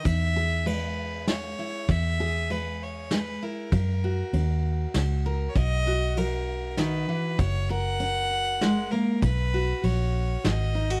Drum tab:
RD |x-x-x-|x-x-x-|x-x-x-|x-x-x-|
SD |----o-|----o-|----o-|----o-|
BD |o-----|o-----|o-----|o-----|

RD |x-x-x-|x-x-x-|
SD |----o-|----o-|
BD |o-----|o-----|